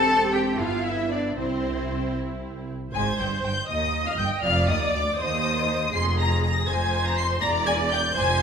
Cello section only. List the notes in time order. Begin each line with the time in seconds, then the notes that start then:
Already playing: A4
0.34 G4
0.59 F4
0.85 E4
1.11 D4
1.38 C4
2.94 G#2
3.19 G2
3.44 G2
3.69 D#2
4.07 F2
4.19 G2
4.44 F2
4.69 D#2
4.94 D2
5.20 D#2
5.94 F2
6.68 F2
7.42 E2
8.16 F2